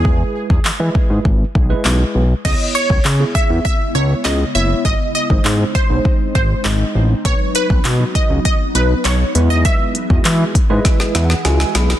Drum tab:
CC |----------------|x---------------|----------------|----------------|
HH |----------------|----------------|----------------|x-x-x-x-x-x-x-x-|
CP |----x-------x---|----x-------x---|----x-------x---|----x-------x---|
SD |----------------|----------------|----------------|----------------|
BD |o--o--o-o-o-----|o--o--o-o-------|o--o--o-o-o-----|o--o--o-o-------|

CC |----------------|
HH |x-x-x-x-x-x-x-x-|
CP |----x-----------|
SD |--------oooooooo|
BD |o--o--o-o-------|